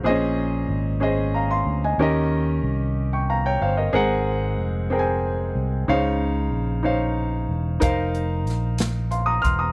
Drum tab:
HH |------|------|------|------|
SD |------|------|------|------|
BD |------|------|------|------|

HH |xxxxxx|
SD |--oo--|
BD |o----o|